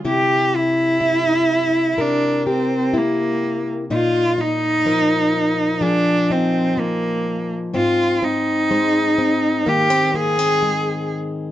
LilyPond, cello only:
\new Staff \with { instrumentName = "Cello" } { \time 4/4 \key c \minor \tempo 4 = 62 g'8 e'4. d'8 c'8 bes8. r16 | f'8 ees'4. d'8 c'8 bes8. r16 | f'8 ees'4. g'8 aes'4 r8 | }